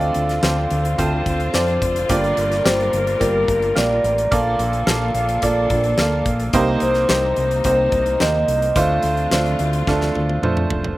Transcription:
Already playing: fingered electric bass D2, upright piano D3 A3 C4 F4 A4 D5, string section D3 C4 F4, vibraphone F5
0.01 closed hi-hat
0.14 fingered electric bass D2, closed hi-hat
0.29 snare, closed hi-hat
0.43 fingered electric bass D2, upright piano C4 F4 A4 C5, snare
0.71 fingered electric bass D2, closed hi-hat
0.85 closed hi-hat
0.98 fingered electric bass D2, upright piano C4 F4 A4 C5, kick, closed hi-hat
1.26 fingered electric bass D2, kick, closed hi-hat
1.40 closed hi-hat
1.53 fingered electric bass F2, upright piano C4 F4 A4 D5, vibraphone C5, snare
1.68 closed hi-hat
1.81 fingered electric bass F1, kick, closed hi-hat
1.96 closed hi-hat
2.09 fingered electric bass G1, upright piano G2 D3 A#3 F4 G4 D5, string section G3 A#4, vibraphone D5, kick, closed hi-hat
2.24 closed hi-hat
2.37 fingered electric bass G1, closed hi-hat
2.52 snare, closed hi-hat
2.64 fingered electric bass G1, upright piano A#3 F4 G4 D5, vibraphone C5, snare
2.80 closed hi-hat
2.93 fingered electric bass G1, closed hi-hat
3.07 closed hi-hat
3.20 fingered electric bass G1, upright piano A#3 F4 G4 D5, vibraphone A#4, kick, closed hi-hat
3.48 fingered electric bass G1, kick, closed hi-hat
3.62 closed hi-hat
3.75 fingered electric bass A#1, upright piano A#3 F4 G4 A#4, vibraphone D5, snare
4.04 fingered electric bass A1, closed hi-hat
4.18 closed hi-hat
4.31 fingered electric bass A#1, upright piano A#2 F3 A#3 F4 A4 D5, string section A#3 D4 A4, vibraphone F5, kick, closed hi-hat
4.59 fingered electric bass A#1, closed hi-hat
4.73 closed hi-hat
4.87 fingered electric bass A#1, upright piano A#3 F4 A4 F5, snare
5.14 fingered electric bass A#1, vibraphone F5, closed hi-hat
5.29 closed hi-hat
5.42 fingered electric bass A#1, upright piano A#3 F4 A4 D5, vibraphone D5, kick, closed hi-hat
5.70 fingered electric bass A#1, kick, closed hi-hat
5.84 closed hi-hat
5.98 fingered electric bass D2, upright piano A#3 F4 A4 F5, snare
6.26 fingered electric bass A#1, kick, closed hi-hat
6.40 closed hi-hat
6.53 fingered electric bass C2, upright piano C3 G3 A#3 D#4 G4 C5, string section C3 D#4, kick, closed hi-hat
6.80 fingered electric bass C2, vibraphone C5, closed hi-hat
6.94 snare, closed hi-hat
7.09 fingered electric bass C2, upright piano A#3 D#4 G4 C5, snare
7.36 fingered electric bass C2, closed hi-hat
7.51 closed hi-hat
7.64 fingered electric bass C2, upright piano A#3 D#4 G4 C5, vibraphone C5, kick, closed hi-hat
7.92 fingered electric bass C2, kick, closed hi-hat
8.06 closed hi-hat
8.20 fingered electric bass D#2, upright piano A#3 D#4 G4 C5, vibraphone D#5, snare
8.48 fingered electric bass C2, closed hi-hat
8.62 closed hi-hat
8.76 fingered electric bass D2, upright piano D3 A3 D4 F4 C5, string section D3 C4 F4, vibraphone F5, kick, closed hi-hat
9.03 fingered electric bass D2, closed hi-hat
9.17 closed hi-hat
9.31 fingered electric bass D2, upright piano A3 D4 F4 C5, snare
9.46 closed hi-hat
9.59 fingered electric bass D2, closed hi-hat
9.73 closed hi-hat
9.87 fingered electric bass D2, upright piano A3 D4 F4 A4, kick, snare
10.01 snare
10.15 fingered electric bass D2, high tom
10.29 high tom
10.42 fingered electric bass F2, upright piano A3 D4 F4 C5, mid tom
10.57 mid tom
10.70 fingered electric bass F1, floor tom
10.84 floor tom

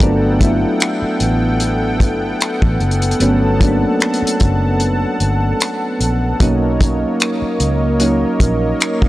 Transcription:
Already playing: synth keys F4 A4
0.00 fingered electric bass G1, synth keys F#3 A3 B3 D4, analog synth pad B3 A4 F#5 G5, kick, closed hi-hat
0.40 synth keys F#3 A3 B3 E4, kick, closed hi-hat
0.80 finger snap, closed hi-hat
1.02 muted fingered electric bass stroke
1.20 fingered electric bass A1, closed hi-hat
1.60 closed hi-hat
2.00 fingered electric bass G1, kick, closed hi-hat
2.41 finger snap, closed hi-hat
2.62 fingered electric bass A1, kick
2.80 fingered electric bass F#1, closed hi-hat
2.91 closed hi-hat
3.02 closed hi-hat
3.11 closed hi-hat
3.20 fingered electric bass G1, synth keys F#3 A3 B3 C#4, analog synth pad A5, closed hi-hat
3.60 synth keys F#3 A3 A#3 D4, kick, closed hi-hat
3.68 synth keys B3
4.00 finger snap, closed hi-hat
4.14 closed hi-hat
4.22 muted fingered electric bass stroke
4.27 closed hi-hat
4.40 fingered electric bass F#1, kick, closed hi-hat
4.80 closed hi-hat
5.20 fingered electric bass G1, closed hi-hat
5.60 finger snap, closed hi-hat
6.01 fingered electric bass A#1, closed hi-hat
6.40 fingered electric bass B1, synth keys F#3 A#3 C#4 D#4, analog synth pad A#3 A#4 C#5 D#5, kick, closed hi-hat
6.81 kick, closed hi-hat
7.20 finger snap, closed hi-hat
7.42 muted fingered electric bass stroke
7.60 fingered electric bass C#2, closed hi-hat
8.00 synth keys F#3 A#3 C#4 D#4, closed hi-hat
8.40 fingered electric bass A#1, kick, closed hi-hat
8.80 finger snap, closed hi-hat
9.02 fingered electric bass B1, kick

